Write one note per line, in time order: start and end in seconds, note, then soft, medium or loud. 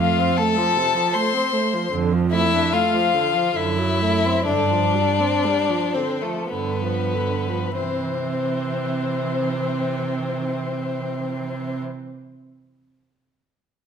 0.00 0.25 F2 medium
0.00 0.20 A3 medium
0.00 0.39 F4 medium
0.00 0.38 F5 medium
0.19 0.40 C4 medium
0.37 0.59 A3 medium
0.37 1.14 A4 medium
0.37 1.15 A5 medium
0.57 0.78 F3 medium
0.76 0.96 C3 medium
0.95 1.16 F3 medium
1.13 1.35 A3 medium
1.13 1.91 C5 medium
1.13 1.92 C6 medium
1.33 1.54 C4 soft
1.53 1.75 A3 medium
1.74 1.92 F3 medium
1.92 2.59 F2 medium
1.92 2.14 D3 medium
2.13 2.34 F3 soft
2.32 2.55 A3 medium
2.32 2.74 E4 medium
2.32 2.75 E5 medium
2.54 2.75 D4 medium
2.72 2.95 A3 medium
2.72 3.57 F4 medium
2.72 3.58 F5 medium
2.93 3.16 F3 medium
3.14 3.36 D3 medium
3.34 3.55 F3 medium
3.56 4.31 F#2 medium
3.56 3.80 D3 medium
3.56 4.45 E4 medium
3.56 4.45 E5 medium
3.78 4.03 F#3 medium
4.01 4.26 A3 medium
4.25 4.46 C4 soft
4.45 5.26 G2 medium
4.45 4.72 D3 medium
4.45 5.96 D4 medium
4.45 5.91 D5 medium
4.71 4.96 F3 soft
4.95 5.21 G3 soft
5.20 5.46 C4 soft
5.44 5.71 G3 medium
5.69 5.97 F3 soft
5.94 6.24 D3 soft
5.94 6.23 C4 medium
5.94 6.24 C5 medium
6.21 6.51 F3 soft
6.21 6.49 A3 soft
6.21 6.50 A4 medium
6.50 7.58 G2 medium
6.50 6.83 D3 soft
6.50 7.76 B3 medium
6.50 7.77 B4 medium
6.81 7.15 F3 soft
7.14 7.49 D3 soft
7.47 7.78 F3 soft
7.78 11.81 C3 medium
7.78 11.80 E3 soft
7.78 11.80 C4 soft
7.78 11.80 C5 medium